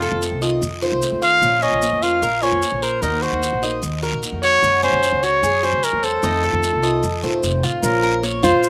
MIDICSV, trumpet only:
0, 0, Header, 1, 2, 480
1, 0, Start_track
1, 0, Key_signature, -5, "minor"
1, 0, Tempo, 400534
1, 1707, Time_signature, 4, 2, 24, 8
1, 10416, End_track
2, 0, Start_track
2, 0, Title_t, "Trumpet"
2, 0, Program_c, 0, 56
2, 0, Note_on_c, 0, 65, 84
2, 268, Note_off_c, 0, 65, 0
2, 1475, Note_on_c, 0, 77, 112
2, 1949, Note_on_c, 0, 75, 95
2, 1967, Note_off_c, 0, 77, 0
2, 2429, Note_on_c, 0, 77, 100
2, 2447, Note_off_c, 0, 75, 0
2, 2905, Note_on_c, 0, 73, 86
2, 2923, Note_off_c, 0, 77, 0
2, 3386, Note_on_c, 0, 72, 80
2, 3404, Note_off_c, 0, 73, 0
2, 3614, Note_on_c, 0, 70, 84
2, 3632, Note_off_c, 0, 72, 0
2, 3857, Note_on_c, 0, 72, 75
2, 3875, Note_off_c, 0, 70, 0
2, 4583, Note_off_c, 0, 72, 0
2, 5307, Note_on_c, 0, 73, 112
2, 5754, Note_off_c, 0, 73, 0
2, 5796, Note_on_c, 0, 72, 99
2, 6273, Note_on_c, 0, 73, 97
2, 6291, Note_off_c, 0, 72, 0
2, 6761, Note_on_c, 0, 72, 86
2, 6779, Note_off_c, 0, 73, 0
2, 6999, Note_on_c, 0, 70, 90
2, 7017, Note_off_c, 0, 72, 0
2, 7237, Note_on_c, 0, 69, 93
2, 7255, Note_off_c, 0, 70, 0
2, 8911, Note_off_c, 0, 69, 0
2, 9384, Note_on_c, 0, 70, 90
2, 9831, Note_off_c, 0, 70, 0
2, 10103, Note_on_c, 0, 72, 87
2, 10416, Note_off_c, 0, 72, 0
2, 10416, End_track
0, 0, End_of_file